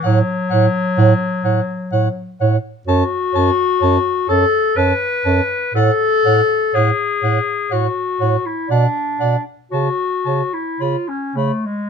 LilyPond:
<<
  \new Staff \with { instrumentName = "Soprano saxophone" } { \time 3/4 \key fis \minor \tempo 4 = 62 fis''8 fis''8 fis''8 fis''8 fis''8 fis''8 | a''8 a''8 a''8 a''8 a''8 a''8 | fis''8 fis''8 fis''8 fis''8 fis''8 fis''8 | fis''8 fis''8 a''8 a''8 b''8 b''8 | }
  \new Staff \with { instrumentName = "Clarinet" } { \time 3/4 \key fis \minor cis''8 cis''8 cis''8 cis''8 cis''8 cis''8 | cis''8 cis''8 cis''8 cis''8 cis''8 cis''8 | cis''8 cis''8 cis''8 cis''8 cis''8 cis''8 | d''8 d''8 cis''8 cis''8 cis''8 cis''8 | }
  \new Staff \with { instrumentName = "Clarinet" } { \time 3/4 \key fis \minor fis2~ fis8 r8 | fis'4. a'8 b'4 | a'4 gis'4 fis'8. e'16 | d'8. r16 fis'8. e'16 eis'16 cis'16 a16 gis16 | }
  \new Staff \with { instrumentName = "Bass clarinet" } { \clef bass \time 3/4 \key fis \minor a,8 a,8 a,8 a,8 a,8 a,8 | fis,8 fis,8 fis,8 fis,8 fis,8 fis,8 | a,8 a,8 a,8 a,8 a,8 a,8 | b,8 b,8 cis8 cis8 cis8 cis8 | }
>>